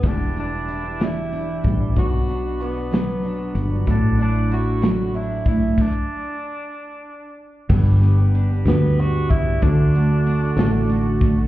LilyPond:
<<
  \new Staff \with { instrumentName = "Brass ensemble" } { \time 6/8 \key d \major \tempo 4. = 63 << { <e' g''>2. | <fis' b''>2. | <e' fis''>2. | r2. |
<g b''>2. | <fis' a''>2. | } \\ { d''2.~ | d''2.~ | d''2. | r2. |
d''2.~ | d''2. | } >> }
  \new Staff \with { instrumentName = "Tenor saxophone" } { \time 6/8 \key d \major d'8 d'4 e'4 r8 | fis'4 b4. r8 | d'8 d'8 fis'4 e'8 e'8 | d'2~ d'8 r8 |
r4. b8 fis'8 e'8 | d'2~ d'8 r8 | }
  \new Staff \with { instrumentName = "Clean electric guitar" } { \time 6/8 \key d \major <e, b, e g d' e'>8 <e g d' e'>16 <e g d' e'>8 <e g d' e'>16 <e, b, e g d' e'>8 <e g d' e'>16 <e g d' e'>8 <e g d' e'>16 | <b, fis b d' fis'>8 <fis b d' fis'>16 <b d' fis'>8 <b d' fis'>16 <b, fis b d' fis'>8 <fis b d' fis'>16 <b d' fis'>8 <b d' fis'>16 | <a, fis a d' e'>8 <fis a d' e'>16 <a d' e'>8 <a d' e'>16 <a, fis a d' e'>8 <fis a d' e'>16 <a d' e'>8 <a d' e'>16 | r2. |
<g, d g b d' g'>8 <g b d' g'>16 <g b d' g'>8 <g b d' g'>16 <g, d g b d' g'>8 <g b d' g'>16 <g b d' g'>8 <g b d' g'>16 | <d a d' fis'>8 <d a d' fis'>16 <a d' fis'>8 <a d' fis'>16 <d a d' fis'>8 <d a d' fis'>16 <a d' fis'>8 <a d' fis'>16 | }
  \new Staff \with { instrumentName = "Steel-string acoustic guitar" } { \time 6/8 \key d \major e,8 d'8 e'8 e8 d'8 g8 | b,8 d'8 fis'8 fis8 d'8 b8 | a,8 d'8 e'8 fis8 d'8 a8 | r2. |
g,8 b8 d'8 g4 b8 | d8 a8 d'8 a8 fis'8 a8 | }
  \new Staff \with { instrumentName = "Fretless electric bass" } { \clef bass \time 6/8 \key d \major e,,2~ e,,8 a,,8 | b,,2~ b,,8 g,,8 | a,,2~ a,,8 fis,,8 | r2. |
g,,4. d,4. | d,4. a,,4. | }
  \new DrumStaff \with { instrumentName = "Drums" } \drummode { \time 6/8 <cymc bd>8 hh8 hh8 <hh sn>8 hh8 <hh bd>8 | <hh bd>8 hh8 hh8 <hh sn>8 hh8 hh8 | <hh bd>8 hh8 hh8 <hh sn>8 hh8 <hh bd>8 | <cymc bd>4. r4. |
<cymc bd>8 cymr8 cymr8 <cymr sn>8 cymr8 <bd cymr>8 | <bd cymr>8 cymr8 cymr8 <cymr sn>8 cymr8 <bd cymr>8 | }
>>